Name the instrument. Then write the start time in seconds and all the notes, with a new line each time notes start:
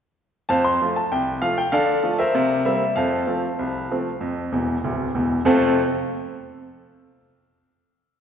grand piano
0.49 F2 C5 F5 A5
0.65 C6
0.82 F3 A3 F4
0.96 A5
1.12 C2 G5
1.42 F3 A3 F4 F5
1.58 G5
1.72 D3 A4 D5 F5
2.03 F3 A3 F4
2.19 A#4 C5 E5
2.35 C3
2.65 G3 A#3 C4 E5
2.96 F2 A4 C5 F5
3.27 F3 A3 C4
3.59 C2
3.91 F3 A3 C4
4.21 F2
4.52 E1 E2
4.84 D1 D2
5.15 E1 E2
5.45 F2 C3 A3 C4 F4 A4